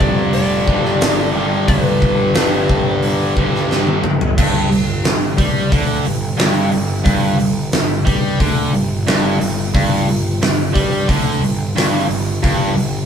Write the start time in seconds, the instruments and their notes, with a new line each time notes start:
Already playing: overdriven electric guitar G2 D3 G3
0.00 picked electric bass F2, lead electric guitar D5, kick
0.33 picked electric bass F1, lead electric guitar D5, open hi-hat
0.68 picked electric bass G1, overdriven electric guitar G2 D3 G3, kick
0.85 snare
1.01 picked electric bass G1, snare, open hi-hat
1.34 picked electric bass G1, overdriven electric guitar G2 D3 G3
1.68 picked electric bass G1, lead electric guitar B4, kick, open hi-hat
2.02 picked electric bass G1, kick
2.35 picked electric bass G1, overdriven electric guitar G2 D3 G3, snare, open hi-hat
2.69 picked electric bass G1, kick
3.02 picked electric bass G1, open hi-hat
3.37 picked electric bass G1, overdriven electric guitar G2 D3 G3, kick
3.55 snare
3.69 picked electric bass G1, snare
3.87 high tom
4.04 picked electric bass G1, mid tom
4.21 floor tom
4.38 picked electric bass G1, overdriven electric guitar G2, kick, crash
4.70 picked electric bass G1, overdriven electric guitar G2, open hi-hat
5.04 picked electric bass G1, overdriven electric guitar G2, snare, open hi-hat
5.37 picked electric bass G2, overdriven electric guitar G3, kick, open hi-hat
5.72 picked electric bass D2, overdriven electric guitar D3, kick, open hi-hat
6.05 picked electric bass G1, overdriven electric guitar G2, open hi-hat
6.37 overdriven electric guitar G2, snare, open hi-hat
6.41 picked electric bass G1
6.72 picked electric bass G1, overdriven electric guitar G2, open hi-hat
7.04 picked electric bass G1, overdriven electric guitar G2, kick, open hi-hat
7.39 picked electric bass G1, overdriven electric guitar G2, open hi-hat
7.72 picked electric bass G1, overdriven electric guitar G2, snare, open hi-hat
8.05 picked electric bass G2, overdriven electric guitar G3, kick, open hi-hat
8.40 picked electric bass D2, overdriven electric guitar D3, kick, open hi-hat
8.73 picked electric bass G1, overdriven electric guitar G2, open hi-hat
9.07 picked electric bass G1, overdriven electric guitar G2, snare, open hi-hat
9.41 picked electric bass G1, overdriven electric guitar G2, open hi-hat
9.74 picked electric bass G1, overdriven electric guitar G2, kick, open hi-hat
10.07 picked electric bass G1, overdriven electric guitar G2, open hi-hat
10.41 picked electric bass G1, overdriven electric guitar G2, snare, open hi-hat
10.74 picked electric bass G2, overdriven electric guitar G3, kick, open hi-hat
11.08 picked electric bass D2, overdriven electric guitar D3, kick, open hi-hat
11.41 picked electric bass G1, overdriven electric guitar G2, open hi-hat
11.75 picked electric bass G1, overdriven electric guitar G2, snare, open hi-hat
12.09 picked electric bass G1, overdriven electric guitar G2, open hi-hat
12.43 picked electric bass G1, overdriven electric guitar G2, kick, open hi-hat
12.76 picked electric bass G1, overdriven electric guitar G2, open hi-hat